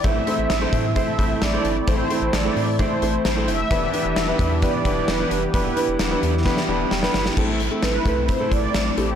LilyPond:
<<
  \new Staff \with { instrumentName = "Analog polysynth" } { \time 4/4 \key a \minor \tempo 4 = 131 e''2 e''4 d''4 | c''4 d''4 c''4 c''8 e''8~ | e''2 d''8 d''8 b'4 | b'4. r2 r8 |
r4 b'4 c''8 d''4 g'8 | }
  \new Staff \with { instrumentName = "Grand piano" } { \time 4/4 \key a \minor << { r1 | r1 | r1 | r2 r8 a''8 g''8 e''8 |
r1 | } \\ { <a c' e' a' c''>16 r16 <a c' e' a' c''>8 r16 <a c' e' a' c''>8 r16 <a c' e' a' c''>16 r16 <a c' e' a' c''>8 r16 <a c' e' a' c''>8 r16 | <a c' e' a' c''>16 r16 <a c' e' a' c''>8 r16 <a c' e' a' c''>8 r16 <a c' e' a' d''>16 r16 <a c' e' a' c''>8 r16 <a c' e' a' c''>8 r16 | <b d' e' g' b'>16 r16 <b d' e' g' b'>8 r16 <b d' e' g' b'>8 r16 <b d' e' g' b'>16 r16 <b d' e' g' b'>8 r16 <b d' e' g' b'>8 r16 | <b d' e' g' b'>16 r16 <b d' e' g' b'>8 r16 <b d' e' g' b'>8 r16 <b d' e' g' b'>16 r16 <b d' e' g' b'>8 r16 <b d' e' g' b'>8 r16 |
<a c' e' a'>8 r16 <a c' e' a'>8 r16 <a c' e' a'>8 r16 <a c' e' a'>8. r8 <a c' e' a'>16 r16 | } >> }
  \new Staff \with { instrumentName = "Harp" } { \time 4/4 \key a \minor e16 a16 c'16 e'16 e''16 r16 c'''16 e'''16 c'''16 a''16 e''16 r16 c'16 a16 e16 a16 | e16 a16 c'16 e'16 e''16 r16 c'''16 e'''16 c'''16 a''16 e''16 r16 c'16 a16 e16 a16 | e16 g16 b16 d'16 e'16 r16 b'16 d''16 b'16 g'16 e'16 r16 b16 g16 e16 g16 | e16 g16 b16 d'16 e'16 r16 b'16 d''16 b'16 g'16 e'16 r16 b16 g16 e16 g16 |
r1 | }
  \new Staff \with { instrumentName = "Analog synth pad" } { \time 4/4 \key a \minor << { <a e'>1~ | <a e'>1 | <e b g'>1~ | <e b g'>1 |
<a e'>1 | } \\ { c'1~ | c'1 | d'1 | e'1 |
c'1 | } >> }
  \new Staff \with { instrumentName = "Analog synth bass" } { \clef bass \time 4/4 \key a \minor a,,8 r16 a,,16 a,,8 a,8. r16 a,,8 a,,8 g,,8 | a,,8 r16 a,,16 a,,8 a,8. r16 a,,8 a,,8 f,,8 | e,,8 r16 e,,16 e,,8 e,8. r16 e,,8 e,,8 f,,8 | e,,8 r16 e,,16 e,,8 e,8. r16 e,,8 e,,8 g,,8 |
a,,4 a,,8 c,8. r16 a,,8 a,,8 a,,8 | }
  \new DrumStaff \with { instrumentName = "Drums" } \drummode { \time 4/4 <hh bd>8 hh8 <hh sn>8 <hh bd>8 <hh bd>8 <hh bd>8 <hh sn>8 hh8 | <hh bd>8 hh8 <hh sn>8 hho8 <hh bd>8 hh8 <hh sn>8 hh8 | <hh bd>8 hh8 <hh sn>8 <hh bd>8 <hh bd>8 <hh bd>8 <hh sn>8 hh8 | <hh bd>8 hh8 <hh sn>8 hh8 <bd sn>16 sn8. sn16 sn16 sn16 sn16 |
<cymc bd>8 hh8 <hh sn>8 <hh bd>8 <hh bd>8 <hh bd>8 <hh sn>8 hh8 | }
>>